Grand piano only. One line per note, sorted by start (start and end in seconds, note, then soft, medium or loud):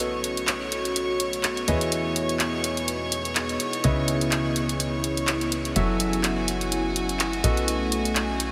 0.00 1.65 B3 medium
0.00 1.65 F#4 medium
0.00 1.65 A4 medium
0.00 1.65 B4 medium
0.00 1.65 D#5 medium
1.68 3.81 E3 medium
1.68 3.81 E4 medium
1.68 3.81 G#4 medium
1.68 3.81 B4 medium
1.68 3.81 D#5 medium
3.84 5.73 C#3 medium
3.84 5.73 E4 medium
3.84 5.73 B4 medium
3.84 5.73 C#5 medium
3.84 5.73 D#5 medium
5.76 7.41 F#3 medium
5.76 7.41 F#4 medium
5.76 7.41 A4 medium
5.76 7.41 C#5 medium
5.76 7.41 E5 medium
7.44 8.52 B3 medium
7.44 8.52 F#4 medium
7.44 8.52 A4 medium
7.44 8.52 B4 medium
7.44 8.52 D#5 medium